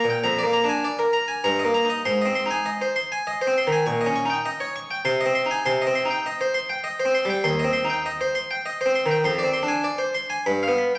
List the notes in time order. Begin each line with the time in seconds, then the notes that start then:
0.04 A#2
0.10 G5
0.24 F2 A#5
0.39 D5
0.43 A#3
0.53 A#5
0.64 D4
0.69 G#5
0.84 D5
0.99 A#4
1.13 A#5
1.28 G#5
1.44 G2 A#5
1.59 D#5
1.65 A#3
1.74 A#5
1.85 D#4
1.90 D#5
2.05 G#2 C6
2.21 D#5
2.26 C4
2.35 C6
2.46 D#4
2.51 G#5
2.66 D#5
2.81 C5
2.96 C6
3.12 G#5
3.27 D#5
3.41 C5
3.47 C4
3.58 C6
3.67 D#3
3.72 G#5
3.86 A#2 C#6
4.01 D#5
4.06 C#4
4.16 C#6
4.25 D#4
4.30 G5
4.46 D#5
4.60 C#5
4.76 C#6
4.91 G5
5.05 C3 C6
5.21 D#5
5.26 C4
5.35 C6
5.46 D#4
5.51 G#5
5.66 C3 C6
5.82 D#5
5.87 C4
5.95 C6
6.05 D#4
6.10 G5
6.26 D#5
6.41 C5
6.54 C6
6.69 G5
6.84 D#5
7.00 C5
7.05 C4
7.15 C6
7.25 G3
7.30 G5
7.44 D#2 C6
7.59 D#5
7.64 C4
7.73 C6
7.85 D#4
7.90 G5
8.06 D#5
8.21 C5
8.35 C6
8.51 G5
8.66 D#5
8.81 C5
8.86 C4
8.95 C6
9.06 D#3
9.11 G5
9.24 F2 C6
9.39 D5
9.43 C4
9.53 C6
9.63 D4
9.68 G#5
9.84 D5
9.98 C5
10.15 C6
10.30 G#5
10.46 G2 B5
10.63 F5
10.68 B3
10.78 B5
10.95 G5